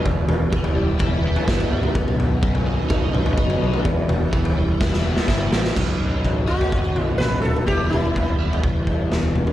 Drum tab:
CC |----------------|----------------|----------------|x---------------|
SD |------------o---|----------------|--------oo-oo-oo|------------o---|
T2 |--o------------o|-o--------o----o|--o-------------|------------o-oo|
FT |o-o--o--o--o-o--|o-o--o--o--o-o--|o-o--o----------|o---o--o--o--o--|
BD |o---o---o---o---|o---o---o---o---|o---o---o---o---|o---o---o-------|

CC |----------------|
SD |------------o---|
T2 |--o---------o-oo|
FT |o---o--o--o--o--|
BD |o---o---o-o-----|